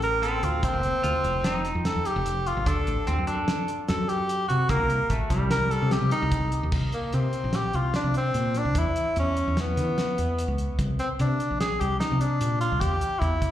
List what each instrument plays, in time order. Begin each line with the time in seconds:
Already playing: fretless electric bass A1, clean electric guitar C4
0.02 tenor saxophone A#4, closed hi-hat
0.22 clean electric guitar C4, tenor saxophone A4, closed hi-hat
0.43 fretless electric bass D2, tenor saxophone F4, closed hi-hat
0.63 tenor saxophone C4, kick, closed hi-hat
0.73 fretless electric bass F1
0.83 clean electric guitar A#3, closed hi-hat
1.03 fretless electric bass D2, clean electric guitar F4, closed hi-hat
1.24 fretless electric bass F1, closed hi-hat
1.44 clean electric guitar D#4, snare, closed hi-hat
1.65 snare, closed hi-hat
1.75 fretless electric bass F2
1.85 tenor saxophone A4, snare, closed hi-hat
1.96 fretless electric bass F2
2.05 tenor saxophone G4, snare, closed hi-hat
2.16 fretless electric bass F1
2.26 closed hi-hat
2.47 tenor saxophone F4, closed hi-hat
2.57 fretless electric bass A1
2.66 fretless electric bass D2, clean electric guitar D4, tenor saxophone A4, kick, closed hi-hat
2.87 fretless electric bass A1, closed hi-hat
3.07 fretless electric bass D2, clean electric guitar C4, closed hi-hat
3.19 fretless electric bass F#2
3.27 clean electric guitar D4, closed hi-hat
3.48 snare, closed hi-hat
3.68 closed hi-hat
3.88 fretless electric bass F#2, tenor saxophone A4, snare, closed hi-hat
4.09 tenor saxophone G4, closed hi-hat
4.29 closed hi-hat
4.48 fretless electric bass C3, tenor saxophone F#4, closed hi-hat
4.69 fretless electric bass C2, clean electric guitar A#3, tenor saxophone A#4, kick, closed hi-hat
4.80 fretless electric bass C2
4.90 closed hi-hat
5.10 fretless electric bass A1, clean electric guitar A3, kick, closed hi-hat
5.30 fretless electric bass C2, clean electric guitar G3, kick, snare, closed hi-hat
5.51 tenor saxophone A#4, snare, closed hi-hat
5.71 tenor saxophone A4, snare, closed hi-hat
5.82 fretless electric bass C3
5.91 tenor saxophone G4, snare, closed hi-hat
6.02 fretless electric bass C3
6.11 tenor saxophone D#4, closed hi-hat
6.22 fretless electric bass C2
6.32 kick, closed hi-hat
6.52 closed hi-hat
6.63 fretless electric bass D#2
6.72 fretless electric bass C2, kick, crash
6.92 tenor saxophone A#3, closed hi-hat
7.13 fretless electric bass C3, tenor saxophone C4, closed hi-hat
7.33 closed hi-hat
7.44 fretless electric bass A#1
7.53 tenor saxophone G4, snare, closed hi-hat
7.73 fretless electric bass C2, tenor saxophone F4, closed hi-hat
7.94 tenor saxophone D4, snare, closed hi-hat
8.04 fretless electric bass C3
8.14 tenor saxophone C4, closed hi-hat
8.34 fretless electric bass A#2, closed hi-hat
8.54 tenor saxophone D4, snare, closed hi-hat
8.65 fretless electric bass C2
8.75 fretless electric bass E2, tenor saxophone E4, kick, closed hi-hat
8.96 closed hi-hat
9.16 fretless electric bass E2, tenor saxophone C#4, closed hi-hat
9.37 closed hi-hat
9.48 fretless electric bass E2
9.57 tenor saxophone B3, snare, closed hi-hat
9.77 fretless electric bass E3, snare, closed hi-hat
9.98 snare, closed hi-hat
10.18 fretless electric bass E2, closed hi-hat
10.39 closed hi-hat
10.48 fretless electric bass C#2
10.58 closed hi-hat
10.79 fretless electric bass C2, kick, closed hi-hat
10.99 tenor saxophone C4, closed hi-hat
11.19 fretless electric bass C3, tenor saxophone D4, closed hi-hat
11.40 closed hi-hat
11.51 fretless electric bass A#1
11.61 tenor saxophone G#4, snare, closed hi-hat
11.80 fretless electric bass C2, tenor saxophone G4, closed hi-hat
12.00 tenor saxophone D#4, snare, closed hi-hat
12.12 fretless electric bass C3
12.21 tenor saxophone D4, closed hi-hat
12.41 fretless electric bass A#2, closed hi-hat
12.61 tenor saxophone F4, closed hi-hat
12.72 fretless electric bass C2
12.81 fretless electric bass E2, tenor saxophone G4, kick, closed hi-hat
13.01 closed hi-hat
13.20 fretless electric bass E2, tenor saxophone E4, kick, closed hi-hat
13.42 kick, closed hi-hat